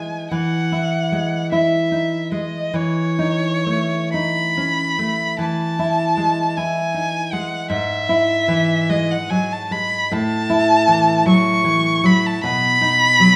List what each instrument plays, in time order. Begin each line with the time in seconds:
Already playing: nylon-string guitar E3 G#3, violin G#5
0.31 nylon-string guitar E3, violin F#5
0.72 nylon-string guitar E4
1.12 nylon-string guitar G#3
1.52 nylon-string guitar E4, violin E5
1.92 nylon-string guitar D#4
2.32 nylon-string guitar G#3, violin D#5
2.73 nylon-string guitar E3, violin C#5
3.19 nylon-string guitar D#4
3.66 nylon-string guitar A3
4.14 nylon-string guitar D#4, violin B5
4.57 nylon-string guitar C#4
4.99 nylon-string guitar A3
5.38 nylon-string guitar E3, violin A5
5.79 nylon-string guitar E4
6.17 nylon-string guitar G#3
6.57 nylon-string guitar E4, violin G#5
6.94 nylon-string guitar D#4
7.32 nylon-string guitar G#3, violin F#5
7.70 nylon-string guitar G#2, violin E5
8.09 nylon-string guitar E4
8.48 nylon-string guitar E3
8.90 nylon-string guitar G#3, violin D#5
9.11 violin F#5
9.30 nylon-string guitar F#3, violin G#5
9.53 violin A5
9.71 nylon-string guitar G#3, violin B5
10.11 nylon-string guitar A2, violin A5
10.50 nylon-string guitar E4
10.88 nylon-string guitar E3
11.26 nylon-string guitar F#3, violin C#6
11.64 nylon-string guitar E3
12.04 nylon-string guitar F#3, violin B5
12.26 violin A5
12.44 nylon-string guitar B2, violin B5
12.81 nylon-string guitar D#4
13.20 nylon-string guitar F#3